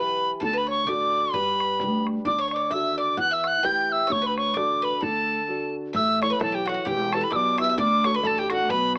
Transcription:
Already playing: B1 E3 E4 G4 B4
0.00 B5
0.40 D2 D3 A4, bodhran
0.44 A5
0.53 B4
0.58 B5
0.67 C#5 C#6
0.87 A1 D4 F#4 A4 D5 D6, bodhran
1.33 G1 G3 B4 B5, bodhran
1.60 bodhran
1.80 D2 D4 G4 B4, bodhran
2.07 bodhran
2.25 D2 D3 D5 D6, bodhran
2.38 C#5 C#6
2.48 C#5 D5, bodhran
2.54 C#5 D6
2.71 D#2 D4 F#4 A4 E5 E6, bodhran
2.97 D5 D6
3.17 E2 E3 F#5 F#6, bodhran
3.31 E5 E6
3.44 F#5 F#6, bodhran
3.63 A1 E4 G4 B4 G5 G6, bodhran
3.91 E5 E6
4.07 D2 D3 C#5
4.11 C#5 C#6, bodhran
4.22 B4
4.27 B5
4.38 C#5 C#6, bodhran
4.54 A1 D4 F#4 A4 D5 D6, bodhran
4.82 B4 B5
4.98 A4 B4
5.02 D2 D3 A4 A5, bodhran
5.48 D4 F#4 A4
5.93 A1 A3 E5 E6, bodhran
6.22 E4 A4 C#5 C#6, bodhran
6.30 B4 B5
6.39 B1 E3 A4 A5, bodhran
6.52 G4 G5
6.65 E4 F#4 A4 C#5 F#5, bodhran
6.74 F#4
6.85 E1 E3 G4 G5, bodhran
7.12 E4 G4 A4 B4 A5, bodhran
7.21 B4 B5
7.30 B1 B2 D5 E6, bodhran
7.36 D6
7.58 E4 G4 B4 E5 E6, bodhran
7.64 E5
7.69 E5
7.78 D2 D3 D5 D6, bodhran
8.03 D4 F#4 A4 C#5 D5 C#6, bodhran
8.14 B4 B5
8.23 A1 A3 A4 A5, bodhran
8.38 G4 G5
8.50 D4 F#4 A4 F#5, bodhran
8.69 B1 B2 B4 B5, bodhran

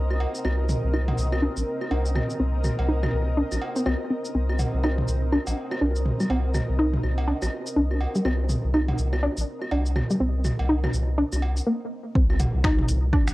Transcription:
Already playing: C2 C4 A#4 D#5
0.10 high bongo, claves
0.20 cowbell
0.35 cabasa
0.45 C2 C4, high bongo, claves
0.69 mid tom, cabasa
0.84 C2
0.93 D#4, high bongo, claves
1.08 mid tom, cowbell
1.18 C2, cabasa
1.32 high bongo, claves
1.42 D4
1.57 A#1, cabasa
1.81 high bongo, claves
1.91 C2 D4, cowbell
2.06 cabasa
2.15 mid tom, high bongo, claves
2.30 cabasa
2.40 C2 C4
2.64 mid tom, high bongo, cabasa, claves
2.79 C2, cowbell
2.89 D#4
3.03 mid tom, high bongo, claves
3.13 C2
3.37 D4
3.52 A#1, high bongo, cabasa, claves
3.62 cowbell
3.76 C4, cabasa
3.86 C2 C4, high bongo, claves
4.11 C4
4.25 cabasa
4.35 C2 C4
4.49 high bongo, claves
4.59 mid tom, cowbell, cabasa
4.74 C2
4.84 D#4, high bongo, claves
4.98 mid tom
5.08 C2, cabasa
5.32 D4, high bongo, claves
5.47 A#1, cowbell, cabasa
5.71 high bongo, claves
5.81 C2 D4
5.96 cabasa
6.06 mid tom
6.20 G3, high bongo, cabasa, claves
6.30 C2 C4, cowbell
6.54 mid tom, high bongo, cabasa, claves
6.69 C2
6.79 D#4
6.93 mid tom
7.03 C2, high bongo, claves
7.18 cowbell
7.28 D4
7.42 A#1, high bongo, cabasa, claves
7.67 cabasa
7.76 C2 D4
7.91 high bongo, claves
8.01 cowbell
8.15 G3, cabasa
8.25 C2 C4, high bongo, claves
8.49 mid tom, cabasa
8.64 C2
8.74 D#4, high bongo, claves
8.88 mid tom, cowbell
8.98 C2, cabasa
9.13 high bongo, claves
9.23 D4
9.37 A#1, cabasa
9.62 high bongo, claves
9.71 C2 D4, cowbell
9.86 cabasa
9.96 mid tom, high bongo, claves
10.10 G3, cabasa
10.20 C2 C4
10.45 mid tom, high bongo, cabasa, claves
10.59 C2, cowbell
10.69 D#4
10.84 mid tom, high bongo, claves
10.93 C2, cabasa
11.18 D4
11.32 C2, high bongo, cabasa, claves
11.42 cowbell
11.57 cabasa
11.67 A#3
12.15 C2 C4, kick
12.30 high bongo, claves
12.40 closed hi-hat, mid tom, cowbell, cabasa
12.54 C2
12.64 D#4, finger snap, kick, high bongo, claves
12.79 mid tom
12.88 C2, closed hi-hat, cabasa
13.13 D4, kick, high bongo, claves
13.27 A#1, finger snap, cowbell, cabasa

